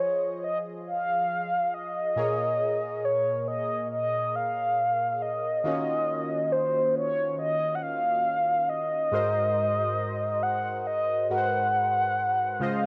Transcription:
Already playing: synth keys F3 F4 G#4 D#5
0.00 soft synth lead C#5
0.44 soft synth lead D#5
0.87 soft synth lead F5
1.74 soft synth lead D#5
2.16 synth keys A#2 A#3 G#4 A#4 C#5
3.05 soft synth lead C#5
3.48 soft synth lead D#5
3.92 soft synth lead D#5
4.35 soft synth lead F5
5.22 soft synth lead D#5
5.64 synth keys D#3 A#3 C#4 F4 F#4
6.52 soft synth lead C5
6.95 soft synth lead C#5
7.39 soft synth lead D#5
7.75 soft synth lead F#5
7.82 soft synth lead F5
8.69 soft synth lead D#5
9.11 synth keys G#2 G#3 F#4 A#4 C5
10.43 soft synth lead F#5
10.87 soft synth lead D#5
11.30 synth keys G#2 G#3 F#4 A#4 B4, soft synth lead F#5
11.38 synth keys C5
12.60 synth keys C#3 G#3 F4 C5 D#5, soft synth lead F5

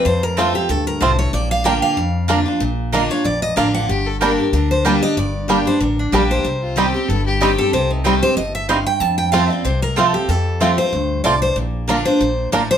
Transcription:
0.05 steel-string acoustic guitar F2 C5, upright bass F2
0.23 steel-string acoustic guitar A#4
0.37 steel-string acoustic guitar F3 A3 C4 F4 A4, five-string banjo A3 C4 F4, mandolin C4 F4 C5 A5
0.54 steel-string acoustic guitar C4 F4 G4
0.69 upright bass D2, steel-string acoustic guitar G2 A4
0.87 steel-string acoustic guitar A#4
1.01 upright bass C2, steel-string acoustic guitar A2 C5, five-string banjo A3 C4 F4, mandolin C4 F4 C5 A5
1.19 steel-string acoustic guitar C#5
1.33 upright bass A#1, steel-string acoustic guitar A#2 D5
1.51 steel-string acoustic guitar F5
1.64 steel-string acoustic guitar D3 A#3 D4 F4 G5, mandolin A#3 F4 D5 A#5, five-string banjo A#3 D4
1.82 steel-string acoustic guitar F5
1.97 upright bass F2, steel-string acoustic guitar F2
2.28 steel-string acoustic guitar D3 A#3 D4 F4, mandolin A#3 F4 D5 A#5, five-string banjo A#3 D4
2.46 steel-string acoustic guitar D4 F4
2.60 upright bass A#1, steel-string acoustic guitar A#2
2.92 steel-string acoustic guitar D3 A#3 D4 F4 D#5, mandolin A#3 F4 D5 A#5, five-string banjo A#3 D4
3.10 steel-string acoustic guitar D4 F4 C#5
3.25 upright bass A#1, steel-string acoustic guitar F2 D5
3.42 steel-string acoustic guitar D#5
3.56 upright bass A1, steel-string acoustic guitar D3 A#3 D4 F4 F5, mandolin A#3 F4 D5 A#5, five-string banjo A#3 D4
3.74 steel-string acoustic guitar F#5
3.89 upright bass G1, steel-string acoustic guitar G2, fiddle G4
4.06 fiddle A4
4.21 steel-string acoustic guitar G3 A#3 D4 G4, five-string banjo G3 D4, mandolin A#3 G4 D5 G5, fiddle A#4
4.38 steel-string acoustic guitar D4 G4
4.53 upright bass D2, steel-string acoustic guitar D3 A#4
4.71 steel-string acoustic guitar C5
4.85 steel-string acoustic guitar G3 A#3 D4 G4 D5, five-string banjo G3 D4, mandolin A#3 G4 D5 G5
5.02 steel-string acoustic guitar D4 G4 D#5
5.17 upright bass G1, steel-string acoustic guitar G2 D5
5.48 steel-string acoustic guitar G3 A#3 D4 G4, five-string banjo G3 D4, mandolin A#3 G4 D5 G5
5.66 steel-string acoustic guitar D4 G4 C5
5.81 upright bass A1, steel-string acoustic guitar D3 A#4
5.99 steel-string acoustic guitar D4
6.12 upright bass A#1, steel-string acoustic guitar G3 A#3 D4 G4, five-string banjo G3 D4, mandolin A#3 G4 D5 G5
6.31 steel-string acoustic guitar C5
6.45 upright bass C2, steel-string acoustic guitar C3
6.63 fiddle F4
6.76 steel-string acoustic guitar D#3 G3 C4 G4, five-string banjo G3 C4 D#4, mandolin C4 G4 D#5 G5, fiddle G4
6.94 steel-string acoustic guitar C4 G4
7.09 upright bass G1, steel-string acoustic guitar G2, fiddle A4
7.26 fiddle G4
7.41 steel-string acoustic guitar D#3 G3 C4 G4, five-string banjo G3 C4 D#4, mandolin C4 G4 D#5 G5
7.58 steel-string acoustic guitar C4 G4 A4
7.73 upright bass C2, steel-string acoustic guitar C3 C5
7.91 steel-string acoustic guitar D#4
8.04 steel-string acoustic guitar D#3 G3 C4 G4, five-string banjo G3 C4 D#4, mandolin C4 G4 D#5 G5
8.23 steel-string acoustic guitar C4 G4 C5
8.36 upright bass G1, steel-string acoustic guitar A2 D#5
8.55 steel-string acoustic guitar E5
8.69 steel-string acoustic guitar G2 F5, five-string banjo G3 C4 D#4, mandolin C4 G4 D#5 G5
8.87 steel-string acoustic guitar G5
9.00 upright bass F2, steel-string acoustic guitar F2 A5
9.18 steel-string acoustic guitar G5
9.32 steel-string acoustic guitar F3 A3 C4 F4 F5, five-string banjo A3 C4 F4, mandolin C4 F4 C5 A5
9.50 steel-string acoustic guitar C4 F4 D5
9.65 upright bass C2, steel-string acoustic guitar C3 C5
9.82 steel-string acoustic guitar A#4
9.96 steel-string acoustic guitar F3 A3 C4 F4 A4, five-string banjo A3 C4 F4, mandolin C4 F4 C5 A5
10.14 steel-string acoustic guitar C4 F4 G4
10.29 upright bass F2, steel-string acoustic guitar F2 A4
10.60 steel-string acoustic guitar F3 A3 C4 F4, five-string banjo A3 C4 F4, mandolin C4 F4 C5 A5
10.78 steel-string acoustic guitar C4 F4 C5
10.93 upright bass D2, steel-string acoustic guitar G2
11.24 upright bass C2, steel-string acoustic guitar A2 D5, five-string banjo A3 C4 F4, mandolin C4 F4 C5 A5
11.42 steel-string acoustic guitar C5
11.56 upright bass A#1, steel-string acoustic guitar A#2
11.88 steel-string acoustic guitar D3 A#3 D4 F4, mandolin A#3 F4 D5 A#5, five-string banjo A#3 D4
12.05 steel-string acoustic guitar D4 F4 C5
12.21 upright bass A#1, steel-string acoustic guitar A#2
12.52 upright bass A1, steel-string acoustic guitar A2 D5, mandolin A#3 F4 D5 A#5, five-string banjo A#3 D4
12.71 steel-string acoustic guitar C5

